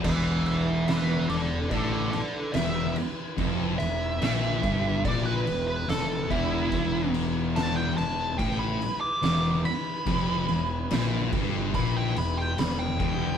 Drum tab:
CC |xxxxxxxx|xxxxxxxx|xxxxxxxx|xxxxxxxx|
SD |--o---o-|--o---o-|--o---o-|--o---o-|
BD |o---o---|o--oo--o|o---o---|o--oo--o|